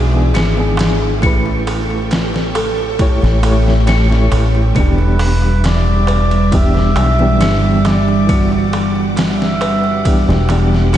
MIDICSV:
0, 0, Header, 1, 8, 480
1, 0, Start_track
1, 0, Tempo, 882353
1, 671, Time_signature, 4, 2, 24, 8
1, 5970, End_track
2, 0, Start_track
2, 0, Title_t, "String machine"
2, 0, Program_c, 0, 50
2, 0, Note_on_c, 0, 68, 82
2, 0, Note_on_c, 0, 76, 73
2, 0, Note_on_c, 0, 86, 83
2, 653, Note_off_c, 0, 68, 0
2, 653, Note_off_c, 0, 76, 0
2, 653, Note_off_c, 0, 86, 0
2, 667, Note_on_c, 0, 85, 87
2, 668, Note_on_c, 0, 69, 84
2, 669, Note_on_c, 0, 79, 71
2, 2569, Note_off_c, 0, 85, 0
2, 2570, Note_off_c, 0, 69, 0
2, 2571, Note_off_c, 0, 79, 0
2, 2590, Note_on_c, 0, 76, 72
2, 2590, Note_on_c, 0, 86, 88
2, 2592, Note_on_c, 0, 55, 76
2, 4491, Note_off_c, 0, 76, 0
2, 4508, Note_on_c, 0, 78, 72
2, 5970, Note_off_c, 0, 55, 0
2, 5970, Note_off_c, 0, 78, 0
2, 5970, Note_off_c, 0, 86, 0
2, 5970, End_track
3, 0, Start_track
3, 0, Title_t, "Muted trumpet"
3, 0, Program_c, 1, 59
3, 2597, Note_on_c, 1, 71, 108
3, 3082, Note_on_c, 1, 74, 112
3, 3091, Note_off_c, 1, 71, 0
3, 3562, Note_on_c, 1, 76, 112
3, 3570, Note_off_c, 1, 74, 0
3, 4282, Note_on_c, 1, 74, 115
3, 4290, Note_off_c, 1, 76, 0
3, 4642, Note_off_c, 1, 74, 0
3, 4647, Note_on_c, 1, 74, 98
3, 4839, Note_off_c, 1, 74, 0
3, 5000, Note_on_c, 1, 76, 109
3, 5693, Note_off_c, 1, 76, 0
3, 5970, End_track
4, 0, Start_track
4, 0, Title_t, "Music box"
4, 0, Program_c, 2, 10
4, 188, Note_on_c, 2, 62, 76
4, 646, Note_off_c, 2, 62, 0
4, 668, Note_on_c, 2, 61, 78
4, 1366, Note_off_c, 2, 61, 0
4, 1389, Note_on_c, 2, 69, 78
4, 1618, Note_off_c, 2, 69, 0
4, 2109, Note_on_c, 2, 61, 77
4, 2567, Note_off_c, 2, 61, 0
4, 2589, Note_on_c, 2, 62, 80
4, 3287, Note_off_c, 2, 62, 0
4, 3307, Note_on_c, 2, 71, 81
4, 3538, Note_off_c, 2, 71, 0
4, 4028, Note_on_c, 2, 62, 74
4, 4487, Note_off_c, 2, 62, 0
4, 4509, Note_on_c, 2, 62, 82
4, 5207, Note_off_c, 2, 62, 0
4, 5229, Note_on_c, 2, 71, 78
4, 5459, Note_off_c, 2, 71, 0
4, 5950, Note_on_c, 2, 62, 79
4, 5970, Note_off_c, 2, 62, 0
4, 5970, End_track
5, 0, Start_track
5, 0, Title_t, "Reed electric piano"
5, 0, Program_c, 3, 4
5, 73, Note_on_c, 3, 52, 87
5, 78, Note_on_c, 3, 59, 83
5, 84, Note_on_c, 3, 62, 77
5, 90, Note_on_c, 3, 68, 91
5, 285, Note_off_c, 3, 52, 0
5, 287, Note_off_c, 3, 59, 0
5, 290, Note_off_c, 3, 62, 0
5, 293, Note_off_c, 3, 68, 0
5, 310, Note_on_c, 3, 52, 81
5, 316, Note_on_c, 3, 59, 74
5, 321, Note_on_c, 3, 62, 71
5, 328, Note_on_c, 3, 68, 96
5, 640, Note_off_c, 3, 52, 0
5, 643, Note_off_c, 3, 59, 0
5, 646, Note_off_c, 3, 62, 0
5, 649, Note_off_c, 3, 68, 0
5, 654, Note_on_c, 3, 57, 77
5, 666, Note_on_c, 3, 64, 65
5, 676, Note_on_c, 3, 67, 70
5, 687, Note_on_c, 3, 71, 83
5, 1595, Note_off_c, 3, 57, 0
5, 1601, Note_off_c, 3, 64, 0
5, 1606, Note_off_c, 3, 67, 0
5, 1611, Note_off_c, 3, 71, 0
5, 1626, Note_on_c, 3, 57, 82
5, 1631, Note_on_c, 3, 64, 75
5, 1637, Note_on_c, 3, 67, 72
5, 1642, Note_on_c, 3, 73, 89
5, 1841, Note_off_c, 3, 57, 0
5, 1843, Note_off_c, 3, 64, 0
5, 1846, Note_off_c, 3, 67, 0
5, 1849, Note_off_c, 3, 73, 0
5, 1866, Note_on_c, 3, 57, 88
5, 1870, Note_on_c, 3, 64, 77
5, 1875, Note_on_c, 3, 67, 77
5, 1881, Note_on_c, 3, 73, 96
5, 2204, Note_off_c, 3, 57, 0
5, 2206, Note_off_c, 3, 64, 0
5, 2208, Note_off_c, 3, 67, 0
5, 2212, Note_off_c, 3, 73, 0
5, 2233, Note_on_c, 3, 57, 79
5, 2239, Note_on_c, 3, 64, 72
5, 2245, Note_on_c, 3, 67, 73
5, 2249, Note_on_c, 3, 73, 91
5, 2562, Note_off_c, 3, 57, 0
5, 2565, Note_off_c, 3, 64, 0
5, 2567, Note_off_c, 3, 67, 0
5, 2570, Note_off_c, 3, 73, 0
5, 2579, Note_on_c, 3, 52, 72
5, 2591, Note_on_c, 3, 59, 67
5, 2601, Note_on_c, 3, 62, 70
5, 2613, Note_on_c, 3, 67, 85
5, 3518, Note_off_c, 3, 52, 0
5, 3523, Note_off_c, 3, 59, 0
5, 3528, Note_off_c, 3, 62, 0
5, 3534, Note_off_c, 3, 67, 0
5, 3545, Note_on_c, 3, 52, 80
5, 3552, Note_on_c, 3, 59, 84
5, 3557, Note_on_c, 3, 62, 78
5, 3562, Note_on_c, 3, 67, 89
5, 3884, Note_off_c, 3, 52, 0
5, 3887, Note_off_c, 3, 59, 0
5, 3889, Note_off_c, 3, 62, 0
5, 3892, Note_off_c, 3, 67, 0
5, 3911, Note_on_c, 3, 52, 88
5, 3918, Note_on_c, 3, 59, 82
5, 3922, Note_on_c, 3, 62, 76
5, 3928, Note_on_c, 3, 67, 91
5, 4124, Note_off_c, 3, 52, 0
5, 4127, Note_off_c, 3, 59, 0
5, 4129, Note_off_c, 3, 62, 0
5, 4132, Note_off_c, 3, 67, 0
5, 4154, Note_on_c, 3, 52, 83
5, 4160, Note_on_c, 3, 59, 75
5, 4165, Note_on_c, 3, 62, 79
5, 4171, Note_on_c, 3, 67, 89
5, 4482, Note_off_c, 3, 52, 0
5, 4485, Note_off_c, 3, 59, 0
5, 4487, Note_off_c, 3, 62, 0
5, 4490, Note_off_c, 3, 67, 0
5, 4499, Note_on_c, 3, 52, 77
5, 4510, Note_on_c, 3, 59, 68
5, 4523, Note_on_c, 3, 62, 68
5, 4534, Note_on_c, 3, 66, 82
5, 5437, Note_off_c, 3, 52, 0
5, 5443, Note_off_c, 3, 59, 0
5, 5449, Note_off_c, 3, 62, 0
5, 5455, Note_off_c, 3, 66, 0
5, 5468, Note_on_c, 3, 52, 87
5, 5472, Note_on_c, 3, 59, 76
5, 5479, Note_on_c, 3, 62, 77
5, 5483, Note_on_c, 3, 67, 92
5, 5682, Note_off_c, 3, 52, 0
5, 5684, Note_off_c, 3, 59, 0
5, 5687, Note_off_c, 3, 62, 0
5, 5689, Note_off_c, 3, 67, 0
5, 5709, Note_on_c, 3, 52, 87
5, 5715, Note_on_c, 3, 59, 80
5, 5721, Note_on_c, 3, 62, 82
5, 5726, Note_on_c, 3, 67, 99
5, 5970, Note_off_c, 3, 52, 0
5, 5970, Note_off_c, 3, 59, 0
5, 5970, Note_off_c, 3, 62, 0
5, 5970, Note_off_c, 3, 67, 0
5, 5970, End_track
6, 0, Start_track
6, 0, Title_t, "Fingered electric bass"
6, 0, Program_c, 4, 33
6, 0, Note_on_c, 4, 35, 97
6, 189, Note_off_c, 4, 35, 0
6, 189, Note_on_c, 4, 32, 85
6, 670, Note_off_c, 4, 32, 0
6, 670, Note_on_c, 4, 33, 93
6, 1732, Note_off_c, 4, 33, 0
6, 1757, Note_on_c, 4, 33, 104
6, 2329, Note_off_c, 4, 33, 0
6, 2349, Note_on_c, 4, 33, 103
6, 2562, Note_off_c, 4, 33, 0
6, 2589, Note_on_c, 4, 28, 91
6, 3790, Note_off_c, 4, 28, 0
6, 3790, Note_on_c, 4, 35, 105
6, 4031, Note_off_c, 4, 35, 0
6, 4031, Note_on_c, 4, 31, 95
6, 5572, Note_off_c, 4, 31, 0
6, 5596, Note_on_c, 4, 28, 106
6, 5970, Note_off_c, 4, 28, 0
6, 5970, End_track
7, 0, Start_track
7, 0, Title_t, "Darbuka"
7, 75, Note_on_c, 9, 63, 39
7, 130, Note_off_c, 9, 63, 0
7, 186, Note_on_c, 9, 63, 56
7, 240, Note_off_c, 9, 63, 0
7, 311, Note_on_c, 9, 63, 40
7, 366, Note_off_c, 9, 63, 0
7, 421, Note_on_c, 9, 63, 94
7, 475, Note_off_c, 9, 63, 0
7, 553, Note_on_c, 9, 63, 38
7, 608, Note_off_c, 9, 63, 0
7, 664, Note_on_c, 9, 63, 56
7, 719, Note_off_c, 9, 63, 0
7, 792, Note_on_c, 9, 63, 38
7, 847, Note_off_c, 9, 63, 0
7, 910, Note_on_c, 9, 63, 84
7, 965, Note_off_c, 9, 63, 0
7, 1036, Note_on_c, 9, 63, 39
7, 1090, Note_off_c, 9, 63, 0
7, 1147, Note_on_c, 9, 63, 51
7, 1201, Note_off_c, 9, 63, 0
7, 1274, Note_on_c, 9, 63, 39
7, 1328, Note_off_c, 9, 63, 0
7, 1388, Note_on_c, 9, 63, 91
7, 1442, Note_off_c, 9, 63, 0
7, 1513, Note_on_c, 9, 63, 38
7, 1567, Note_off_c, 9, 63, 0
7, 1627, Note_on_c, 9, 63, 51
7, 1682, Note_off_c, 9, 63, 0
7, 1754, Note_on_c, 9, 63, 39
7, 1809, Note_off_c, 9, 63, 0
7, 1867, Note_on_c, 9, 63, 94
7, 1921, Note_off_c, 9, 63, 0
7, 1993, Note_on_c, 9, 63, 37
7, 2048, Note_off_c, 9, 63, 0
7, 2105, Note_on_c, 9, 63, 58
7, 2159, Note_off_c, 9, 63, 0
7, 2228, Note_on_c, 9, 63, 36
7, 2282, Note_off_c, 9, 63, 0
7, 2348, Note_on_c, 9, 63, 84
7, 2402, Note_off_c, 9, 63, 0
7, 2474, Note_on_c, 9, 63, 39
7, 2529, Note_off_c, 9, 63, 0
7, 2583, Note_on_c, 9, 63, 47
7, 2638, Note_off_c, 9, 63, 0
7, 2711, Note_on_c, 9, 63, 39
7, 2766, Note_off_c, 9, 63, 0
7, 2826, Note_on_c, 9, 63, 93
7, 2880, Note_off_c, 9, 63, 0
7, 2949, Note_on_c, 9, 63, 43
7, 3004, Note_off_c, 9, 63, 0
7, 3068, Note_on_c, 9, 63, 47
7, 3123, Note_off_c, 9, 63, 0
7, 3303, Note_on_c, 9, 63, 84
7, 3358, Note_off_c, 9, 63, 0
7, 3433, Note_on_c, 9, 63, 36
7, 3488, Note_off_c, 9, 63, 0
7, 3549, Note_on_c, 9, 63, 54
7, 3603, Note_off_c, 9, 63, 0
7, 3668, Note_on_c, 9, 63, 38
7, 3722, Note_off_c, 9, 63, 0
7, 3785, Note_on_c, 9, 63, 98
7, 3839, Note_off_c, 9, 63, 0
7, 3912, Note_on_c, 9, 63, 39
7, 3967, Note_off_c, 9, 63, 0
7, 4029, Note_on_c, 9, 63, 61
7, 4083, Note_off_c, 9, 63, 0
7, 4157, Note_on_c, 9, 63, 39
7, 4211, Note_off_c, 9, 63, 0
7, 4270, Note_on_c, 9, 63, 84
7, 4324, Note_off_c, 9, 63, 0
7, 4397, Note_on_c, 9, 63, 42
7, 4452, Note_off_c, 9, 63, 0
7, 4512, Note_on_c, 9, 63, 47
7, 4566, Note_off_c, 9, 63, 0
7, 4635, Note_on_c, 9, 63, 33
7, 4690, Note_off_c, 9, 63, 0
7, 4751, Note_on_c, 9, 63, 87
7, 4805, Note_off_c, 9, 63, 0
7, 4872, Note_on_c, 9, 63, 36
7, 4926, Note_off_c, 9, 63, 0
7, 4985, Note_on_c, 9, 63, 52
7, 5039, Note_off_c, 9, 63, 0
7, 5227, Note_on_c, 9, 63, 86
7, 5282, Note_off_c, 9, 63, 0
7, 5352, Note_on_c, 9, 63, 38
7, 5406, Note_off_c, 9, 63, 0
7, 5467, Note_on_c, 9, 63, 46
7, 5522, Note_off_c, 9, 63, 0
7, 5597, Note_on_c, 9, 63, 37
7, 5652, Note_off_c, 9, 63, 0
7, 5705, Note_on_c, 9, 63, 87
7, 5759, Note_off_c, 9, 63, 0
7, 5837, Note_on_c, 9, 63, 38
7, 5892, Note_off_c, 9, 63, 0
7, 5946, Note_on_c, 9, 63, 53
7, 5970, Note_off_c, 9, 63, 0
7, 5970, End_track
8, 0, Start_track
8, 0, Title_t, "Drums"
8, 190, Note_on_c, 9, 51, 90
8, 198, Note_on_c, 9, 38, 120
8, 244, Note_off_c, 9, 51, 0
8, 253, Note_off_c, 9, 38, 0
8, 430, Note_on_c, 9, 51, 75
8, 438, Note_on_c, 9, 38, 102
8, 484, Note_off_c, 9, 51, 0
8, 493, Note_off_c, 9, 38, 0
8, 669, Note_on_c, 9, 36, 106
8, 670, Note_on_c, 9, 51, 85
8, 724, Note_off_c, 9, 36, 0
8, 724, Note_off_c, 9, 51, 0
8, 909, Note_on_c, 9, 51, 65
8, 964, Note_off_c, 9, 51, 0
8, 1148, Note_on_c, 9, 51, 84
8, 1157, Note_on_c, 9, 38, 113
8, 1203, Note_off_c, 9, 51, 0
8, 1211, Note_off_c, 9, 38, 0
8, 1282, Note_on_c, 9, 38, 58
8, 1337, Note_off_c, 9, 38, 0
8, 1389, Note_on_c, 9, 51, 69
8, 1443, Note_off_c, 9, 51, 0
8, 1628, Note_on_c, 9, 51, 87
8, 1629, Note_on_c, 9, 36, 106
8, 1683, Note_off_c, 9, 51, 0
8, 1684, Note_off_c, 9, 36, 0
8, 1764, Note_on_c, 9, 38, 45
8, 1818, Note_off_c, 9, 38, 0
8, 1868, Note_on_c, 9, 51, 72
8, 1922, Note_off_c, 9, 51, 0
8, 2002, Note_on_c, 9, 38, 39
8, 2056, Note_off_c, 9, 38, 0
8, 2107, Note_on_c, 9, 51, 92
8, 2116, Note_on_c, 9, 38, 116
8, 2161, Note_off_c, 9, 51, 0
8, 2170, Note_off_c, 9, 38, 0
8, 2243, Note_on_c, 9, 38, 49
8, 2298, Note_off_c, 9, 38, 0
8, 2349, Note_on_c, 9, 51, 69
8, 2404, Note_off_c, 9, 51, 0
8, 2588, Note_on_c, 9, 51, 89
8, 2589, Note_on_c, 9, 36, 109
8, 2642, Note_off_c, 9, 51, 0
8, 2643, Note_off_c, 9, 36, 0
8, 2828, Note_on_c, 9, 46, 78
8, 2882, Note_off_c, 9, 46, 0
8, 3068, Note_on_c, 9, 51, 88
8, 3076, Note_on_c, 9, 38, 120
8, 3122, Note_off_c, 9, 51, 0
8, 3131, Note_off_c, 9, 38, 0
8, 3309, Note_on_c, 9, 51, 68
8, 3364, Note_off_c, 9, 51, 0
8, 3434, Note_on_c, 9, 51, 44
8, 3489, Note_off_c, 9, 51, 0
8, 3548, Note_on_c, 9, 51, 91
8, 3549, Note_on_c, 9, 36, 113
8, 3603, Note_off_c, 9, 36, 0
8, 3603, Note_off_c, 9, 51, 0
8, 3683, Note_on_c, 9, 38, 37
8, 3737, Note_off_c, 9, 38, 0
8, 3789, Note_on_c, 9, 51, 68
8, 3843, Note_off_c, 9, 51, 0
8, 4029, Note_on_c, 9, 51, 87
8, 4037, Note_on_c, 9, 38, 122
8, 4083, Note_off_c, 9, 51, 0
8, 4092, Note_off_c, 9, 38, 0
8, 4270, Note_on_c, 9, 51, 63
8, 4278, Note_on_c, 9, 38, 58
8, 4324, Note_off_c, 9, 51, 0
8, 4333, Note_off_c, 9, 38, 0
8, 4510, Note_on_c, 9, 36, 114
8, 4510, Note_on_c, 9, 51, 83
8, 4564, Note_off_c, 9, 36, 0
8, 4564, Note_off_c, 9, 51, 0
8, 4749, Note_on_c, 9, 51, 64
8, 4804, Note_off_c, 9, 51, 0
8, 4989, Note_on_c, 9, 51, 90
8, 4998, Note_on_c, 9, 38, 116
8, 5043, Note_off_c, 9, 51, 0
8, 5052, Note_off_c, 9, 38, 0
8, 5124, Note_on_c, 9, 38, 61
8, 5179, Note_off_c, 9, 38, 0
8, 5231, Note_on_c, 9, 51, 70
8, 5285, Note_off_c, 9, 51, 0
8, 5469, Note_on_c, 9, 51, 92
8, 5471, Note_on_c, 9, 36, 114
8, 5524, Note_off_c, 9, 51, 0
8, 5525, Note_off_c, 9, 36, 0
8, 5605, Note_on_c, 9, 38, 46
8, 5659, Note_off_c, 9, 38, 0
8, 5711, Note_on_c, 9, 51, 67
8, 5765, Note_off_c, 9, 51, 0
8, 5845, Note_on_c, 9, 38, 35
8, 5899, Note_off_c, 9, 38, 0
8, 5950, Note_on_c, 9, 51, 86
8, 5970, Note_off_c, 9, 51, 0
8, 5970, End_track
0, 0, End_of_file